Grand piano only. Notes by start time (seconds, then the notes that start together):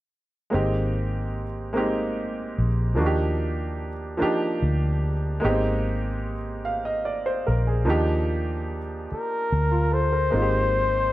0.50 G#3 A#3 C4 D#4
0.55 G4
1.73 G#3 A#3 C4 D#4
1.77 G4
2.95 F3 A#3 D4 D#4
3.00 F#4
3.06 G4
4.17 F3 A#3 D4 D#4
4.22 G4
5.40 G#3 A#3 B3 D#4
5.45 C4 G4
6.65 F5
6.85 D#5
7.05 D5
7.26 C5
7.47 A#4
7.67 G#4
7.85 F3 A#3 D4 D#4
7.90 G4
9.71 F4
9.92 A4
10.12 A#4
10.30 G#3 A#3 C4 D#4
10.35 F4
10.42 G4